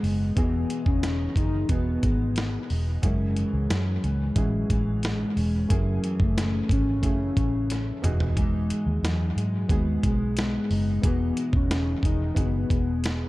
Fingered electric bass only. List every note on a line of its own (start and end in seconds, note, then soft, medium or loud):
0.03 0.30 F#1 medium
0.37 0.63 E1 loud
0.86 1.26 E1 medium
1.36 1.63 F#1 medium
1.69 1.96 E1 medium
2.03 2.56 G#1 medium
2.70 2.97 E1 medium
3.03 3.43 F#1 medium
3.53 3.67 C#2 medium
3.70 3.97 F#2 loud
4.03 4.30 C#2 medium
4.36 4.63 A1 medium
4.70 5.23 A1 medium
5.36 5.63 E1 medium
5.70 5.97 F#1 medium
6.20 6.60 F#1 medium
6.70 7.03 G#1 medium
7.03 7.30 F#1 medium
7.37 7.90 A1 medium
8.03 8.70 E1 medium
8.86 9.00 D#2 medium
9.03 9.30 E2 medium
9.36 9.63 G#2 medium
9.69 9.97 D#2 medium
10.03 10.57 B1 medium
10.70 10.97 F#1 medium
11.03 11.30 E1 loud
11.53 11.93 E1 medium
12.03 12.30 E1 medium
12.36 12.63 F#1 loud
12.70 13.24 E1 medium